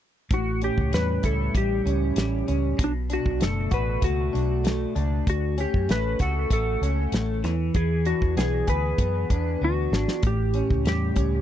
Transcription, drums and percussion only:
0.31 kick, closed hi-hat
0.62 closed hi-hat
0.78 kick
0.93 snare, closed hi-hat
1.23 kick, closed hi-hat
1.55 kick, closed hi-hat
1.87 closed hi-hat
2.16 snare, closed hi-hat
2.48 closed hi-hat
2.79 kick, closed hi-hat
3.10 closed hi-hat
3.26 kick
3.41 snare, closed hi-hat
3.71 kick, closed hi-hat
4.02 kick, closed hi-hat
4.35 closed hi-hat
4.65 snare, closed hi-hat
4.96 closed hi-hat
5.27 kick, closed hi-hat
5.58 closed hi-hat
5.74 kick
5.89 snare, closed hi-hat
6.19 kick, closed hi-hat
6.50 kick, closed hi-hat
6.83 closed hi-hat
7.12 snare, closed hi-hat
7.44 snare, closed hi-hat
7.74 kick, closed hi-hat
8.05 closed hi-hat
8.22 kick
8.37 snare, closed hi-hat
8.67 kick, closed hi-hat
8.98 kick, closed hi-hat
9.30 kick, closed hi-hat
9.93 snare
10.08 snare
10.23 kick, closed hi-hat
10.54 closed hi-hat
10.70 kick
10.85 snare, closed hi-hat
11.16 kick, closed hi-hat

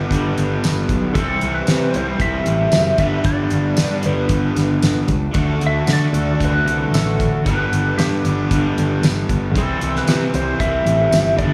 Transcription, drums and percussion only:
0.11 kick, closed hi-hat
0.38 closed hi-hat
0.64 snare, closed hi-hat, tambourine
0.89 kick, closed hi-hat
1.15 kick, closed hi-hat
1.41 closed hi-hat
1.67 snare, closed hi-hat, tambourine
1.94 closed hi-hat
2.20 kick, closed hi-hat
2.46 closed hi-hat
2.72 snare, closed hi-hat, tambourine
2.98 kick, closed hi-hat
3.24 kick, closed hi-hat
3.50 closed hi-hat
3.77 snare, closed hi-hat, tambourine
4.03 closed hi-hat
4.29 kick, closed hi-hat
4.56 snare, closed hi-hat
4.82 snare, closed hi-hat, tambourine
5.08 kick, closed hi-hat
5.34 kick, closed hi-hat
5.61 closed hi-hat
5.87 snare, closed hi-hat, tambourine
6.14 closed hi-hat
6.40 kick, closed hi-hat
6.68 closed hi-hat
6.94 snare, closed hi-hat, tambourine
7.20 kick, closed hi-hat
7.46 kick, closed hi-hat
7.73 closed hi-hat
7.99 snare, closed hi-hat, tambourine
8.25 closed hi-hat
8.51 kick, closed hi-hat
8.78 closed hi-hat
9.03 snare, closed hi-hat, tambourine
9.29 kick, closed hi-hat
9.56 kick, closed hi-hat
9.81 closed hi-hat
9.96 snare
10.07 snare, closed hi-hat, tambourine
10.34 closed hi-hat
10.60 kick, closed hi-hat
10.87 closed hi-hat
11.12 snare, closed hi-hat, tambourine
11.39 kick, closed hi-hat

